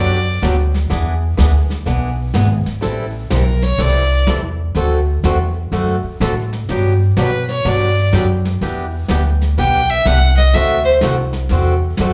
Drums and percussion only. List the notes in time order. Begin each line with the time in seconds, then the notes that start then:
0.43 snare, hi-hat pedal
0.74 snare
0.90 brush sweep, snare
1.39 snare, hi-hat pedal
1.70 snare
1.86 brush sweep, snare
2.34 snare, hi-hat pedal
2.66 snare
2.82 brush sweep, snare
3.30 snare, hi-hat pedal
3.62 snare
3.79 brush sweep, snare
4.27 snare, hi-hat pedal
4.75 brush sweep, snare
5.24 snare, hi-hat pedal
5.72 brush sweep, snare
6.21 snare, hi-hat pedal
6.53 snare
6.69 brush sweep, snare
7.17 snare, hi-hat pedal
7.48 snare
7.65 brush sweep, snare
8.13 snare, hi-hat pedal
8.45 snare
8.61 brush sweep, snare
9.08 snare, hi-hat pedal
9.41 snare
9.58 brush sweep, snare
10.05 snare, hi-hat pedal
10.37 snare
10.54 brush sweep, snare
11.01 snare, hi-hat pedal
11.33 snare
11.49 brush sweep, snare
11.97 snare, hi-hat pedal